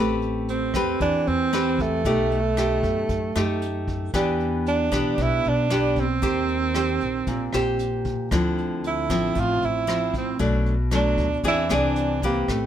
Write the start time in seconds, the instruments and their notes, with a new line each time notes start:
Already playing: upright bass A1, nylon-string guitar A3 C4 G4 B4
0.22 closed hi-hat
0.48 tenor saxophone C4, closed hi-hat
0.74 upright bass E2, nylon-string guitar C4 G4 B4, kick, cross-stick, closed hi-hat
1.00 upright bass E2, nylon-string guitar E3, tenor saxophone D4, kick, closed hi-hat
1.27 upright bass E2, tenor saxophone C4, closed hi-hat
1.53 nylon-string guitar C4 G4 B4, cross-stick, closed hi-hat
1.79 tenor saxophone A3, kick, closed hi-hat
2.05 upright bass B1, nylon-string guitar B2 A3 D#4 G4, kick, closed hi-hat
2.31 closed hi-hat
2.57 nylon-string guitar A3 D#4 G4, cross-stick, closed hi-hat
2.83 upright bass F#2, kick, closed hi-hat
3.09 upright bass F#2, kick, closed hi-hat
3.36 upright bass F#2, nylon-string guitar A3 D#4 G4, cross-stick, closed hi-hat
3.62 closed hi-hat
3.88 kick, closed hi-hat
4.14 upright bass E2, nylon-string guitar E3 B3 D4 G4, kick, cross-stick, closed hi-hat
4.40 closed hi-hat
4.66 tenor saxophone D4, closed hi-hat
4.92 upright bass B1, nylon-string guitar B3 D4 G4, kick, cross-stick
5.18 upright bass B1, nylon-string guitar B2, tenor saxophone E4, kick, closed hi-hat
5.45 upright bass B1, tenor saxophone D4, closed hi-hat
5.70 nylon-string guitar B3 D4 G4, cross-stick, closed hi-hat
5.96 kick, closed hi-hat
6.00 tenor saxophone C4
6.22 upright bass D#2, nylon-string guitar D#3 G4 C5, kick, closed hi-hat
6.48 closed hi-hat
6.74 nylon-string guitar G4 C5, cross-stick, closed hi-hat
7.01 upright bass A#1, closed hi-hat
7.27 upright bass A#1, nylon-string guitar A#2, kick, closed hi-hat
7.53 upright bass A#1, nylon-string guitar G4 C5, cross-stick, closed hi-hat
7.79 closed hi-hat
8.05 kick, closed hi-hat
8.31 upright bass D2, nylon-string guitar D3 F3 C4 E4, kick, cross-stick, closed hi-hat
8.58 closed hi-hat
8.84 tenor saxophone E4, closed hi-hat
9.10 upright bass A1, nylon-string guitar F3 C4 E4, kick, cross-stick, closed hi-hat
9.35 upright bass A1, nylon-string guitar A2, kick, closed hi-hat
9.40 tenor saxophone F4
9.62 upright bass A1, tenor saxophone E4, closed hi-hat
9.87 nylon-string guitar F3 C4 E4, cross-stick, closed hi-hat
10.14 tenor saxophone C4, kick, closed hi-hat
10.39 upright bass B1, nylon-string guitar B2 F#3 A3 D4, kick, closed hi-hat
10.66 closed hi-hat
10.91 nylon-string guitar F#3 A3 D4, tenor saxophone D4, cross-stick, closed hi-hat
11.18 upright bass D2, kick, closed hi-hat
11.43 upright bass E2, nylon-string guitar E3 C4 D4 G#4, tenor saxophone E4, kick, closed hi-hat
11.69 upright bass C2, nylon-string guitar C4 D4 G#4, cross-stick, closed hi-hat
11.74 tenor saxophone D4
11.96 closed hi-hat
12.22 tenor saxophone A#3, nylon-string guitar C4 G4 B4, kick, closed hi-hat
12.48 upright bass A1, nylon-string guitar A3, kick, cross-stick, closed hi-hat